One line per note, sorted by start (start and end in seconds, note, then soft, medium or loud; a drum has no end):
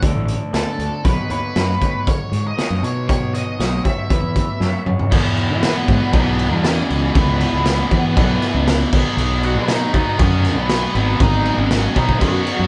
0.02 0.12 D2 medium
0.02 0.52 D3 medium
0.02 0.53 A3 medium
0.02 0.53 D4 medium
0.02 0.53 A4 loud
0.02 kick loud
0.02 closed hi-hat medium
0.15 0.35 A1 loud
0.28 closed hi-hat medium
0.53 0.63 D2 medium
0.53 1.03 D3 medium
0.53 0.80 A3 medium
0.53 0.79 D4 medium
0.53 1.05 A4 medium
0.53 0.78 A4 medium
0.53 snare loud
0.53 closed hi-hat medium
0.79 0.89 D2 medium
0.79 1.04 A3 medium
0.79 1.04 D4 medium
0.79 1.03 A4 medium
0.79 closed hi-hat soft
1.04 1.15 B1 loud
1.04 1.55 B3 medium
1.04 1.31 D#4 medium
1.04 1.30 F#4 medium
1.04 1.30 B4 medium
1.04 1.29 C#5 medium
1.04 kick loud
1.04 closed hi-hat medium
1.30 1.40 D#2 medium
1.30 1.55 D#4 medium
1.30 1.55 F#4 medium
1.30 2.10 B4 medium
1.30 1.56 C#5 medium
1.30 closed hi-hat medium
1.55 1.75 F#2 medium
1.55 2.07 B3 medium
1.55 1.82 D#4 medium
1.55 1.81 F#4 medium
1.55 1.80 C#5 medium
1.55 snare loud
1.55 closed hi-hat medium
1.81 2.57 D#4 medium
1.81 2.57 F#4 medium
1.81 2.58 C#5 medium
1.81 kick medium
1.81 closed hi-hat medium
2.07 2.43 C#5 medium
2.07 kick medium
2.07 closed hi-hat medium
2.32 2.51 G#2 medium
2.32 closed hi-hat medium
2.47 2.84 D#5 loud
2.57 3.07 B3 medium
2.57 2.84 D#4 medium
2.57 2.83 F#4 medium
2.57 2.81 C#5 medium
2.57 snare medium
2.57 closed hi-hat medium
2.70 2.80 F#2 medium
2.82 3.41 B2 medium
2.82 3.08 D#4 medium
2.82 3.08 F#4 medium
2.82 3.09 C#5 medium
2.82 3.07 C#5 medium
2.82 closed hi-hat medium
3.08 3.58 B3 medium
3.08 3.35 D#4 medium
3.08 3.34 F#4 medium
3.08 3.34 C#5 loud
3.08 3.33 C#5 medium
3.08 kick loud
3.08 closed hi-hat medium
3.34 3.59 D#4 medium
3.34 3.59 F#4 medium
3.34 3.60 C#5 medium
3.34 3.84 D#5 medium
3.34 closed hi-hat medium
3.59 3.79 B1 medium
3.59 4.09 B3 medium
3.59 3.85 D#4 medium
3.59 3.85 F#4 medium
3.59 3.84 C#5 medium
3.59 snare loud
3.59 closed hi-hat medium
3.84 4.10 D#4 soft
3.84 4.09 F#4 medium
3.84 4.09 C#5 medium
3.84 4.83 E5 medium
3.84 kick medium
3.84 closed hi-hat medium
4.09 4.20 E2 medium
4.09 4.59 E3 medium
4.09 4.60 B3 medium
4.09 4.60 E4 medium
4.09 4.60 B4 medium
4.09 kick loud
4.09 closed hi-hat medium
4.23 4.42 E2 medium
4.36 kick medium
4.36 closed hi-hat medium
4.60 4.70 F#2 medium
4.60 5.10 F#3 medium
4.60 4.87 C#4 medium
4.60 4.86 F#4 medium
4.60 4.85 C#5 medium
4.60 snare medium
4.86 4.96 F#2 medium
4.86 5.12 C#4 medium
4.86 5.11 F#4 medium
4.86 5.11 C#5 medium
4.86 mid tom medium
4.99 floor tom medium
5.12 6.12 E2 medium
5.12 5.52 E2 loud
5.12 6.13 B2 medium
5.12 6.13 E3 loud
5.12 kick loud
5.12 crash loud
5.12 crash medium
5.37 crash medium
5.50 5.70 E3 medium
5.62 6.10 B3 medium
5.62 6.12 B4 medium
5.62 snare loud
5.62 crash medium
5.88 5.98 G#2 medium
5.88 kick medium
5.88 crash medium
6.13 6.52 B1 medium
6.13 7.13 E2 medium
6.13 7.14 B2 medium
6.13 7.15 E3 medium
6.13 6.61 B3 medium
6.13 6.55 B4 medium
6.13 kick loud
6.13 crash medium
6.39 crash medium
6.52 6.81 E2 medium
6.52 6.66 A4 medium
6.64 7.13 C#4 medium
6.64 7.16 C#5 loud
6.64 snare loud
6.64 crash medium
6.90 7.09 C#2 medium
6.90 crash medium
7.14 7.44 C#2 loud
7.14 8.15 E2 medium
7.14 8.15 B2 loud
7.14 8.16 E3 medium
7.14 8.64 B3 medium
7.14 8.64 B4 loud
7.14 kick loud
7.14 crash medium
7.41 crash medium
7.53 7.82 C#2 medium
7.66 snare loud
7.66 crash medium
7.91 8.18 E3 medium
7.91 kick medium
7.91 crash medium
8.16 8.36 B1 medium
8.16 8.91 E2 medium
8.16 8.91 B2 medium
8.16 8.92 E3 medium
8.16 kick loud
8.16 crash medium
8.42 snare soft
8.42 crash medium
8.54 8.83 C#2 loud
8.67 snare loud
8.67 crash medium
8.92 9.02 B1 medium
8.92 9.95 B2 medium
8.92 9.95 F#3 loud
8.92 9.93 B3 loud
8.92 kick medium
8.92 crash medium
9.17 9.56 B1 loud
9.17 crash medium
9.43 9.56 F#4 medium
9.43 9.56 F#5 loud
9.43 crash medium
9.55 9.75 B2 medium
9.55 9.92 D#4 medium
9.55 9.92 D#5 medium
9.68 snare loud
9.68 crash medium
9.93 10.03 D#2 medium
9.93 10.94 B2 medium
9.93 10.94 F#3 medium
9.93 10.97 B3 medium
9.93 10.18 D#4 medium
9.93 10.18 D#5 medium
9.93 kick medium
9.93 crash medium
10.19 10.56 F#2 medium
10.19 10.55 C#4 medium
10.19 10.57 C#5 medium
10.19 kick loud
10.19 crash medium
10.45 snare soft
10.45 crash medium
10.56 10.86 B1 medium
10.56 10.94 B3 medium
10.56 10.94 B4 medium
10.69 snare loud
10.69 crash medium
10.95 11.14 G#1 loud
10.95 11.95 B2 medium
10.95 11.95 F#3 loud
10.95 11.18 B3 medium
10.95 11.95 B3 loud
10.95 11.21 B4 medium
10.95 crash medium
11.18 11.49 G#1 loud
11.18 11.56 D#4 medium
11.18 11.59 D#5 loud
11.18 kick loud
11.18 crash medium
11.46 crash medium
11.56 11.87 G#1 medium
11.56 11.94 C#4 medium
11.56 11.96 C#5 medium
11.71 snare loud
11.71 crash medium
11.95 12.21 B2 medium
11.95 12.67 B2 medium
11.95 12.67 F#3 medium
11.95 12.67 B3 medium
11.95 12.20 D#4 medium
11.95 12.20 D#5 medium
11.95 kick medium
11.95 crash medium
12.09 kick medium
12.20 12.41 F#2 medium
12.20 12.67 F#4 medium
12.20 12.67 F#5 medium
12.20 kick medium
12.20 crash medium
12.47 crash medium
12.59 12.67 F#2 loud